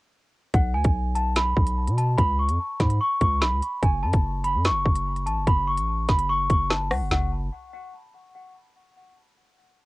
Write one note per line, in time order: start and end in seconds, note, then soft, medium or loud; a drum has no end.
0.54 0.76 B1 loud
0.54 0.71 F#5 loud
0.54 kick loud
0.54 closed hi-hat medium
0.74 0.84 D2 loud
0.74 1.13 G#5 medium
0.84 1.54 B1 loud
0.84 kick loud
0.84 closed hi-hat medium
1.15 1.33 A5 medium
1.15 closed hi-hat medium
1.36 1.94 B5 medium
1.36 snare loud
1.36 closed hi-hat medium
1.57 1.89 B1 loud
1.57 kick medium
1.67 closed hi-hat medium
1.87 2.17 B2 loud
1.87 closed hi-hat medium
1.98 2.15 A5 medium
1.98 closed hi-hat medium
2.18 2.51 C#2 loud
2.18 2.35 B5 loud
2.18 kick loud
2.18 closed hi-hat medium
2.39 2.78 C#6 medium
2.49 2.59 F2 loud
2.49 closed hi-hat medium
2.80 3.00 G#2 loud
2.80 2.97 B5 medium
2.80 kick loud
2.80 snare medium
2.80 closed hi-hat medium
2.90 closed hi-hat medium
3.01 3.18 C#6 medium
3.21 3.43 C#2 loud
3.21 3.39 C#6 medium
3.21 kick medium
3.21 closed hi-hat medium
3.41 3.53 B1 loud
3.41 3.80 B5 medium
3.41 snare loud
3.52 3.62 C#2 loud
3.63 closed hi-hat medium
3.83 4.05 F#1 loud
3.83 4.00 G#5 loud
3.83 kick loud
3.83 closed hi-hat medium
4.03 4.13 F#2 loud
4.03 4.42 A5 medium
4.13 4.56 F#1 loud
4.13 kick loud
4.13 closed hi-hat medium
4.44 4.62 B5 medium
4.44 closed hi-hat medium
4.55 4.72 F#2 loud
4.65 5.23 C#6 medium
4.65 snare loud
4.65 closed hi-hat medium
4.70 4.85 F#1 loud
4.85 5.28 F#1 loud
4.85 kick medium
4.95 closed hi-hat medium
5.16 closed hi-hat medium
5.26 5.38 A1 loud
5.26 5.44 A5 medium
5.26 closed hi-hat medium
5.37 5.47 F#1 loud
5.47 5.79 F#1 loud
5.47 5.65 B5 medium
5.47 kick loud
5.47 closed hi-hat medium
5.67 6.06 C#6 medium
5.77 6.07 A1 loud
5.77 closed hi-hat medium
6.08 6.48 F#1 loud
6.08 6.26 B5 medium
6.08 kick loud
6.08 snare medium
6.08 closed hi-hat medium
6.19 closed hi-hat medium
6.29 6.47 C#6 loud
6.50 6.92 F#1 loud
6.50 6.67 C#6 medium
6.50 kick medium
6.50 closed hi-hat medium
6.70 6.87 A5 medium
6.70 snare loud
6.91 7.03 C#2 medium
6.91 7.08 F#5 medium
6.91 cross-stick loud
6.91 open hi-hat medium
7.01 7.11 F#1 loud
7.11 7.50 F#1 loud
7.11 7.31 F#5 medium
7.11 snare loud
7.11 floor tom loud